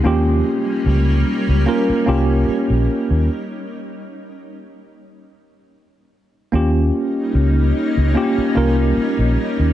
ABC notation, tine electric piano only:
X:1
M:4/4
L:1/16
Q:"Swing 16ths" 1/4=74
K:Ebmix
V:1 name="Tine electric piano"
[B,DFG]6 z2 [B,DFB]2 [B,DFG]4- [B,DFG] z | z16 | [B,DFG]6 z2 [B,DFG]2 [B,DFB]4- [B,DFB] z |]